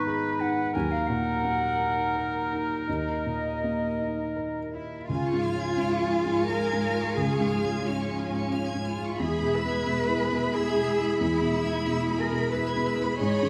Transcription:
Already playing: G#2 D#3 B3 D#4 G#4 B4
0.06 G#4 D#5 B5
0.40 D#4 G#4 F#5
0.73 D#2 F#3 D#4 A#4 G#5
0.91 F5
1.07 A#2 F#4 F#5
1.44 A#3 A#4
1.79 D#4 D#5
2.15 A#4 A#5
2.51 D#4 A#4
2.87 D#2 D#5
3.25 A#2 A#3
3.62 A#3 A#4
3.99 D#4 D#5
4.36 A#4 A#5
4.72 E4 A#4 D#5
5.09 C#2 C#3 G#3 F4 F5 G#5
5.26 C#6
5.33 G#2
5.44 F3 F6
5.55 C#4
5.61 G#6
5.77 G#2 C#5 F6
5.93 C#6
6.01 F4
6.11 F4 G#5
6.25 G#2
6.31 C#6
6.48 F4 A#4 F5 F6
6.65 G#6
6.73 G#2
6.83 C#5 F6
6.95 F4
6.99 C#6
7.15 C#2 C#3 G#4 G#5
7.33 C#6
7.40 G#2
7.49 F3 F6
7.63 C#4 G#6
7.84 G#2 C#4 C#5 F6
8.01 C#6
8.06 F4
8.16 F4 G#5
8.29 G#2
8.34 C#6
8.51 F4 F5 F6
8.68 G#6
8.75 G#2
8.86 F4 C#5 F6
8.97 F4
9.04 C#6
9.18 E2 E3 G#3 G#4 E5 G#5 B5
9.37 B5
9.42 B2
9.53 E4 B4 E6
9.65 B3
9.70 G#6
9.86 B2 G#4 E6
10.04 B5
10.08 E4
10.21 E5 G#5
10.31 B2
10.36 B5
10.53 E4 G#4 G#5 E6
10.70 G#6
10.76 B2
10.88 G#4 E6
10.99 E4
11.03 B5
11.20 E2 E3 E4 G#5
11.36 B5
11.41 B2
11.52 E4 E6
11.64 B3
11.69 G#6
11.86 B2 G#4 E6
12.01 B5
12.10 E4
12.18 A#4 E5 G#5
12.32 B2 B5
12.52 E4 B4 B5 E6
12.70 G#6
12.76 B2
12.86 G#4 E6
12.99 E4 B5
13.17 G#2 G#3 G#4 C#5 D#5 G#5 B5
13.21 G#2
13.36 B5
13.43 D#3

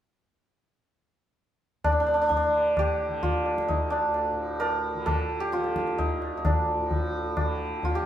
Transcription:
1.84 A2 D4, tabla na, tabla ge
1.92 D4
2.00 D4
2.06 D4
2.14 D4
2.22 D4
2.29 D4, tabla tin, tabla ge
2.37 D4
2.47 D3
2.54 tabla na
2.77 G4, tabla na, tabla ge
3.09 D3
3.23 F4, tabla tin, tabla ge
3.46 tabla na
3.58 tabla ke
3.68 D2 D#4, tabla tin, tabla ge
3.90 D4, tabla na
4.14 tabla na
4.32 A2
4.60 A#4, tabla na
4.94 D3
5.06 A4, tabla na, tabla ge
5.40 G4
5.52 D3 F4, tabla te
5.64 tabla te
5.76 tabla ke
5.87 tabla te
5.98 D#4, tabla tin, tabla ge
6.17 D2
6.22 tabla na
6.37 D#4
6.45 D4, tabla na, tabla ge
6.80 A2
6.91 tabla tin, tabla ge
7.37 D3, tabla na, tabla ge
7.83 F4, tabla tin, tabla ge
7.95 G4
8.02 D3

